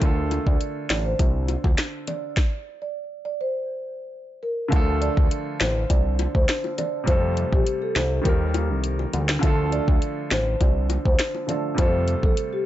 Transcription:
Already playing: grand piano D3
0.00 analog synth bass D2, grand piano A3 F4, kick, closed hi-hat, high bongo
0.05 grand piano A4
0.31 closed hi-hat, high bongo
0.47 analog synth bass D2, marimba D5, kick
0.61 closed hi-hat
0.90 analog synth bass A1, marimba D5, snare, closed hi-hat
1.06 marimba C5
1.19 analog synth bass C2, kick, closed hi-hat, high bongo
1.48 closed hi-hat, high bongo
1.64 analog synth bass D2, kick, high bongo
1.78 snare, closed hi-hat
2.07 marimba D5, closed hi-hat, low bongo
2.37 kick, snare
2.82 marimba D5
3.25 marimba D5
3.41 marimba C5
4.43 marimba A#4
4.68 analog synth bass D2, grand piano D3 F3 A3, kick, closed hi-hat
4.73 grand piano F4 A4, high bongo
5.02 marimba D5, closed hi-hat
5.17 analog synth bass D2, kick
5.31 closed hi-hat
5.60 analog synth bass A1, marimba C5, snare, closed hi-hat, high bongo, low bongo
5.90 analog synth bass C2, marimba D5, kick, closed hi-hat, high bongo
6.19 closed hi-hat, high bongo
6.35 analog synth bass D2, marimba C5, kick
6.48 snare, closed hi-hat
6.64 high bongo
6.78 marimba D5, closed hi-hat, low bongo
7.04 analog synth bass F2, grand piano C3 G3 A3, marimba C5, kick, closed hi-hat
7.08 grand piano F4 A4, high bongo
7.37 closed hi-hat
7.52 analog synth bass A#1, marimba G4, kick
7.67 closed hi-hat
7.82 marimba A4
7.96 analog synth bass C2, marimba C5, snare, closed hi-hat, high bongo, low bongo
8.21 analog synth bass D#2, grand piano D#3 G3 A#3, marimba A#4, kick, closed hi-hat, high bongo
8.27 grand piano G4 A#4
8.54 closed hi-hat, high bongo
8.70 analog synth bass C2
8.84 closed hi-hat
8.99 high bongo
9.13 analog synth bass D2, closed hi-hat, low bongo
9.29 snare
9.39 analog synth bass D2, grand piano D3 F3 A3, kick, closed hi-hat
9.43 grand piano F4 A4, high bongo
9.72 marimba D5, closed hi-hat
9.88 analog synth bass D2, kick
10.02 closed hi-hat
10.31 analog synth bass A1, marimba C5, snare, closed hi-hat, high bongo, low bongo
10.61 analog synth bass C2, marimba D5, kick, closed hi-hat, high bongo
10.90 closed hi-hat, high bongo
11.05 analog synth bass D2, marimba C5, kick
11.19 snare, closed hi-hat
11.35 high bongo
11.47 grand piano D3 F3 A3 F4 A4, marimba D5, closed hi-hat, low bongo
11.74 analog synth bass F2, grand piano C3 G3 A3, marimba C5, kick, closed hi-hat
11.79 grand piano F4 A4, high bongo
12.08 closed hi-hat
12.23 analog synth bass A#1, marimba A4, kick
12.37 closed hi-hat
12.53 marimba G4

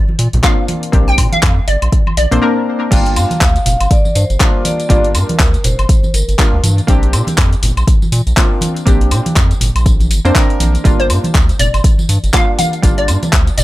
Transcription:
Already playing: synth stab A#3 C4 D4 G4
0.09 high conga
0.19 analog synth bass A#2, open hi-hat
0.33 analog synth bass A#1, closed hi-hat, low conga
0.43 synth stab A#3 C4 D4 F4, synth pluck F5, kick, clap, closed hi-hat
0.68 open hi-hat, high conga
0.83 closed hi-hat
0.92 analog synth bass A#1, synth stab A#3 C4 D4 G4, kick, closed hi-hat
1.08 synth pluck G5
1.18 analog synth bass A#2, kick, open hi-hat, high woodblock
1.32 synth pluck F5, closed hi-hat, high conga
1.43 analog synth bass F2, kick, clap, closed hi-hat
1.68 analog synth bass G1, synth pluck D5, open hi-hat
1.82 analog synth bass A#1, closed hi-hat, high woodblock
1.92 kick, closed hi-hat
2.07 high conga, high woodblock
2.17 analog synth bass A#1, synth pluck D5, open hi-hat
2.31 analog synth bass A#1, synth stab A#3 C4 D4 C5, closed hi-hat, low conga
2.41 synth stab A#3 C4 D4 A#4
2.91 analog synth bass G1, synth stab G3 A#3 D4 F4, vibraphone G5, kick, closed hi-hat, crash, tambourine
3.06 closed hi-hat
3.16 analog synth bass G2, vibraphone F5, open hi-hat, tambourine, high woodblock
3.31 closed hi-hat, tambourine, high conga
3.41 analog synth bass D2, kick, clap, closed hi-hat, tambourine
3.56 closed hi-hat, tambourine
3.66 analog synth bass F1, vibraphone F5, open hi-hat, tambourine, low conga
3.80 analog synth bass G1, closed hi-hat, tambourine, high woodblock
3.91 vibraphone D5, kick, closed hi-hat, tambourine
4.05 tambourine, high conga
4.15 analog synth bass G2, vibraphone C5, open hi-hat, tambourine
4.30 analog synth bass G1, closed hi-hat, tambourine
4.40 synth stab G3 A#3 D4 F4, kick, clap, closed hi-hat, tambourine
4.65 vibraphone D5, open hi-hat, tambourine, high conga
4.80 closed hi-hat, tambourine
4.89 analog synth bass G1, synth stab G3 A#3 D4 F4, vibraphone D5, kick, closed hi-hat, tambourine
5.04 closed hi-hat
5.14 analog synth bass G2, vibraphone A#4, open hi-hat, tambourine, high woodblock
5.29 closed hi-hat, tambourine, high conga
5.39 analog synth bass D2, kick, clap, closed hi-hat, tambourine
5.54 closed hi-hat, tambourine
5.64 analog synth bass F1, vibraphone C5, open hi-hat, tambourine, low conga
5.79 analog synth bass G1, closed hi-hat, tambourine, high woodblock
5.89 kick, closed hi-hat, tambourine
6.03 tambourine, high conga
6.14 analog synth bass G1, vibraphone A#4, open hi-hat, tambourine
6.28 analog synth bass G1, closed hi-hat, tambourine
6.38 synth stab G3 A#3 D4 F4, kick, clap, closed hi-hat, tambourine
6.53 analog synth bass D2
6.63 analog synth bass G2, open hi-hat, tambourine, high conga
6.78 closed hi-hat, tambourine
6.87 analog synth bass A#1, synth stab A#3 C4 D4 G4, kick, closed hi-hat, tambourine
7.03 closed hi-hat
7.13 analog synth bass A#2, open hi-hat, tambourine, high woodblock
7.27 closed hi-hat, tambourine, high conga
7.38 analog synth bass F2, kick, clap, closed hi-hat, tambourine
7.53 closed hi-hat, tambourine
7.63 analog synth bass G1, open hi-hat, tambourine, low conga
7.77 analog synth bass A#1, closed hi-hat, tambourine, high woodblock
7.87 kick, closed hi-hat, tambourine
8.02 tambourine, high conga
8.12 analog synth bass A#2, open hi-hat, tambourine
8.27 analog synth bass A#1, closed hi-hat, tambourine
8.37 synth stab A#3 C4 D4 F4, kick, clap, closed hi-hat, tambourine
8.61 open hi-hat, tambourine, high conga
8.76 closed hi-hat, tambourine
8.86 analog synth bass A#1, synth stab A#3 C4 D4 G4, kick, closed hi-hat, tambourine
9.01 closed hi-hat
9.11 analog synth bass A#2, open hi-hat, tambourine, high woodblock
9.26 closed hi-hat, tambourine, high conga
9.36 analog synth bass F2, kick, clap, closed hi-hat, tambourine
9.51 closed hi-hat, tambourine
9.61 analog synth bass G1, open hi-hat, tambourine, low conga
9.75 analog synth bass A#1, closed hi-hat, tambourine, high woodblock
9.86 kick, closed hi-hat, tambourine
10.00 closed hi-hat, tambourine, high conga
10.10 analog synth bass G1, open hi-hat, tambourine
10.25 analog synth bass F2, synth stab A#3 C4 D4 C5, closed hi-hat, tambourine
10.35 synth stab A#3 C4 D4 A#4, kick, clap, closed hi-hat, tambourine
10.50 closed hi-hat
10.60 analog synth bass A#1, open hi-hat, tambourine, high conga
10.75 closed hi-hat, tambourine
10.84 analog synth bass G1, synth stab G3 A#3 D4 F4, kick, closed hi-hat, tambourine
11.00 synth pluck C5, closed hi-hat
11.10 analog synth bass G2, open hi-hat, tambourine, high woodblock
11.24 closed hi-hat, tambourine, high conga
11.35 analog synth bass D2, kick, clap, closed hi-hat, tambourine
11.49 closed hi-hat, tambourine
11.59 analog synth bass F1, synth pluck D5, open hi-hat, tambourine, low conga
11.74 analog synth bass G1, closed hi-hat, tambourine, high woodblock
11.84 kick, closed hi-hat, tambourine
11.99 tambourine, high conga
12.09 analog synth bass G2, open hi-hat, tambourine
12.24 analog synth bass G1, closed hi-hat, tambourine
12.33 synth stab G3 A#3 D4 F4, synth pluck F5, kick, clap, closed hi-hat, tambourine
12.59 synth pluck F5, open hi-hat, tambourine, high conga
12.73 closed hi-hat, tambourine
12.82 analog synth bass G1, synth stab G3 A#3 D4 F4, kick, closed hi-hat, tambourine
12.98 synth pluck D5, closed hi-hat
13.08 analog synth bass G2, open hi-hat, tambourine, high woodblock
13.23 closed hi-hat, tambourine, high conga
13.33 analog synth bass D2, kick, clap, closed hi-hat, tambourine
13.47 closed hi-hat, tambourine
13.58 analog synth bass F1, synth pluck D5, open hi-hat, tambourine, low conga

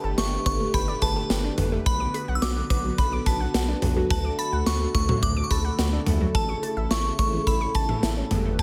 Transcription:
Already playing: analog synth pad D3 A3 G4 B4, synth bell A5, downlifter
0.04 analog synth bass G1, synth pluck A4
0.18 analog synth bass G1, synth pluck G4, synth bell C#6, snare, closed hi-hat
0.46 analog synth bass G1, synth pluck B3, synth bell C#6, kick, closed hi-hat
0.60 synth pluck A3
0.74 analog synth bass G1, synth pluck G5, synth bell B5, kick, closed hi-hat
0.88 synth pluck D5
1.02 analog synth bass G1, synth pluck B4, synth bell A5, kick, closed hi-hat, cowbell
1.16 synth pluck A4
1.30 analog synth bass G1, synth pluck G4, snare, closed hi-hat
1.44 synth pluck D4
1.58 analog synth bass G1, synth pluck B3, closed hi-hat, mid tom
1.72 synth pluck A3
1.86 analog synth bass B1, analog synth pad D3 B3 F#4, synth bell B5, synth pluck F#6, kick, closed hi-hat
2.00 synth pluck D6
2.14 synth pluck B5, closed hi-hat, cowbell
2.28 analog synth bass B1, synth pluck F#5
2.35 synth bell E6
2.42 analog synth bass B1, synth pluck F#4, synth bell D6, snare, closed hi-hat
2.70 analog synth bass B1, synth pluck B3, synth bell D6, kick, closed hi-hat
2.84 synth pluck F#3
2.98 analog synth bass B1, synth bell B5, synth pluck F#6, kick, closed hi-hat
3.12 synth pluck D6
3.26 analog synth bass B1, synth bell A5, synth pluck B5, kick, closed hi-hat
3.40 synth pluck F#5
3.54 analog synth bass B1, synth pluck F#4, snare, closed hi-hat
3.68 synth pluck D4
3.82 analog synth bass B1, synth pluck B3, closed hi-hat, mid tom, cowbell
3.97 synth pluck F#3
4.10 analog synth bass D2, analog synth pad A3 A4, synth bell A5, synth pluck F#6, kick, closed hi-hat
4.25 synth pluck D6
4.39 synth pluck A5, synth bell B5, closed hi-hat
4.53 analog synth bass D2, synth pluck F#5
4.66 analog synth bass D2, synth pluck F#4, synth bell C#6, snare, closed hi-hat
4.95 analog synth bass D2, synth pluck A3, synth bell C#6, kick, closed hi-hat
5.09 synth pluck F#3, mid tom
5.23 analog synth bass D2, synth bell D6, synth pluck F#6, kick, closed hi-hat
5.37 synth pluck D6
5.44 synth bell C#6
5.50 analog synth bass D2, synth pluck A5, synth bell B5, kick, closed hi-hat, cowbell
5.65 synth pluck F#5
5.79 analog synth bass D2, synth pluck F#4, snare, closed hi-hat
5.93 synth pluck D4
6.06 analog synth bass D2, synth pluck A3, closed hi-hat, mid tom
6.21 synth pluck F#3
6.35 analog synth bass A1, analog synth pad C#3 E4, synth bell A5, synth pluck E6, kick, closed hi-hat
6.49 synth pluck C#6
6.63 synth pluck A5, closed hi-hat, cowbell
6.77 analog synth bass A1, synth pluck E5
6.91 analog synth bass A1, synth pluck E4, synth bell C#6, snare, closed hi-hat
7.19 analog synth bass A1, synth pluck A3, synth bell C#6, kick, closed hi-hat
7.33 synth pluck E3
7.47 analog synth bass A1, synth bell B5, synth pluck E6, kick, closed hi-hat
7.61 synth pluck C#6
7.75 analog synth bass A1, synth pluck A5, synth bell A5, kick, closed hi-hat
7.89 synth pluck E5, mid tom
8.03 analog synth bass A1, synth pluck E4, snare, closed hi-hat
8.17 synth pluck C#4
8.31 analog synth bass G1, analog synth pad D3 G4 B4, synth pluck B3, closed hi-hat, mid tom
8.45 synth pluck A3
8.59 synth pluck G5, synth bell A5, kick, closed hi-hat

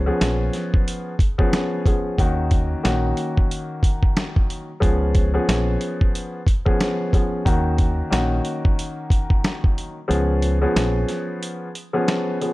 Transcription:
0.06 grand piano F3 B3 C#4 G#4
0.21 fingered electric bass A#1, snare, closed hi-hat
0.53 snare, closed hi-hat
0.74 kick
0.88 closed hi-hat
1.19 kick, closed hi-hat
1.38 grand piano F3 B3 C#4 G#4, kick
1.53 snare, closed hi-hat
1.86 grand piano F3 B3 C#4 G#4, kick, closed hi-hat
2.18 fingered electric bass D#2, grand piano D#3 A#3 C#4 F#4, kick, closed hi-hat
2.51 kick, closed hi-hat
2.83 fingered electric bass A#1, grand piano D#3 A#3 C#4 F#4, snare, closed hi-hat
3.17 closed hi-hat
3.37 kick
3.51 closed hi-hat
3.83 kick, closed hi-hat
4.03 kick
4.17 snare, closed hi-hat
4.36 kick
4.50 closed hi-hat
4.80 fingered electric bass C#2, grand piano F3 B3 C#4 G#4, kick, closed hi-hat
5.15 kick, closed hi-hat
5.34 grand piano F3 B3 C#4 G#4
5.48 fingered electric bass A#1, snare, closed hi-hat
5.81 closed hi-hat
6.01 kick
6.15 closed hi-hat
6.47 kick, closed hi-hat
6.66 grand piano F3 B3 C#4 G#4, kick
6.80 snare, closed hi-hat
7.13 grand piano F3 B3 C#4 G#4, kick, closed hi-hat
7.45 fingered electric bass D#2, grand piano D#3 A#3 C#4 F#4, kick, closed hi-hat
7.78 kick, closed hi-hat
8.10 fingered electric bass A#1, grand piano D#3 A#3 C#4 F#4, snare, closed hi-hat
8.45 closed hi-hat
8.65 kick
8.79 closed hi-hat
9.10 kick, closed hi-hat
9.30 kick
9.44 snare, closed hi-hat
9.64 kick
9.78 closed hi-hat
10.08 fingered electric bass C#2, grand piano F3 B3 C#4 G#4, closed hi-hat
10.42 closed hi-hat
10.61 grand piano F3 B3 C#4 G#4
10.76 fingered electric bass A#1, snare, closed hi-hat
11.09 snare, closed hi-hat
11.43 closed hi-hat
11.75 closed hi-hat
11.93 grand piano F3 B3 C#4 G#4
12.08 snare, closed hi-hat
12.41 grand piano F3 B3 C#4 G#4, closed hi-hat

